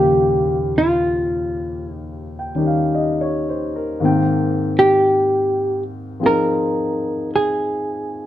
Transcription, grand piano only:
Already playing: D#2 A#2 C#3 F3 A#3 G4
2.39 G5
2.55 D#3 G3 C#4 D#4 G4
2.67 F5
2.95 D#5
3.21 C#5
3.49 C5
3.76 A#4
4.00 G#2 D#3 A#3 C4
4.05 G5
6.20 F3 C4 D#4 G#4

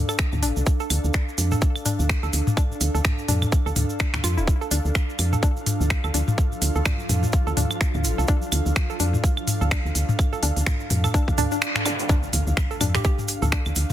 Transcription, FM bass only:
0.33 D2
0.43 A1
0.57 C2
0.90 D2
1.04 D2
1.38 F2
1.99 D2
2.23 D2
2.33 D2
2.81 D2
2.94 D2
3.28 F2
3.66 D2
3.76 D2
4.14 D2
4.24 F2
4.37 D1
4.71 D2
4.85 D2
5.19 F2
5.80 D2
6.04 D2
6.14 D2
6.62 D2
6.75 D2
7.09 F2
7.47 D2
7.57 D2
7.95 D2
8.04 A1
8.18 C2
8.52 D2
8.66 D2
9.00 F2
9.61 D2
9.85 D2
9.95 D2
10.43 D2
10.57 D2
10.90 F2
11.28 D2
11.38 D2
12.33 D2
12.47 D2
12.81 F2
13.42 D2
13.66 D2
13.76 D2

